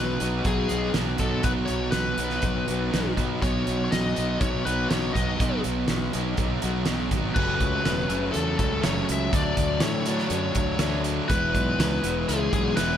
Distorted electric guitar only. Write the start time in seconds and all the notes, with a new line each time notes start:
Already playing: B2 F#3 B3 D#4
0.20 F#3 B3 D#4
0.71 F#3 B3 D#4
0.94 B2 F#3 B3 D#4
1.19 F#3 B3 D#4
1.44 B2 F#3 B3 D#4
2.18 F#3 B3 D#4
2.68 F#3 B3 D#4
2.92 B2 F#3 B3 D#4
3.16 F#3 B3 D#4
3.41 B2 F#3 B3 D#4
4.15 F#3 B3 D#4
4.65 F#3 B3 D#4
4.90 B2 F#3 B3 D#4
5.14 F#3 B3 D#4
5.40 B2 F#3 B3 D#4
6.13 F#3 B3 D#4
6.62 F#3 B3 D#4
6.86 B2 F#3 B3 D#4
7.11 F#3 B3 D#4
7.36 F#2 C#3 F#3 A3 C#4
8.09 F#2 C#3 F#3 A3 C#4
8.83 F#2 C#3 F#3 A3 C#4
9.31 D3 F#3 A3 D4
10.06 D3 F#3 A3 D4
10.79 D3 F#3 A3 D4
11.29 E3 G#3 B3 E4
12.03 E3 G#3 B3 E4
12.77 E3 G#3 B3 E4